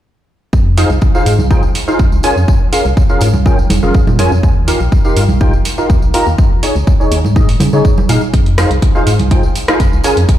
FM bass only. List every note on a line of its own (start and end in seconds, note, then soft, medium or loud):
0.53 0.85 F2 loud
0.90 0.99 C2 medium
1.26 1.40 G#2 loud
1.39 1.70 C2 medium
1.99 2.09 F2 loud
2.12 2.21 C2 medium
2.37 2.45 F2 medium
2.85 2.94 C2 medium
3.21 3.36 G#2 loud
3.34 3.65 C2 medium
3.70 3.80 F1 medium
3.83 3.92 F1 medium
4.07 4.20 A#2 medium
4.19 4.28 F2 medium
4.32 4.40 F2 loud
4.43 4.75 D#2 loud
4.80 4.89 A#1 medium
5.17 5.31 G2 loud
5.29 5.60 A#1 medium
5.90 5.99 D#2 loud
6.02 6.11 A#1 medium
6.27 6.35 D#2 medium
6.76 6.84 C#2 medium
7.12 7.26 D#2 loud
7.24 7.56 G#2 medium
7.60 7.70 C#3 medium
7.73 7.82 C#3 medium
8.09 8.19 A#2 medium
8.34 8.65 F2 loud
8.71 8.79 C2 medium
9.07 9.21 G#2 loud
9.19 9.51 C2 medium
9.80 9.89 F2 loud
9.93 10.01 C2 medium
10.17 10.26 F2 medium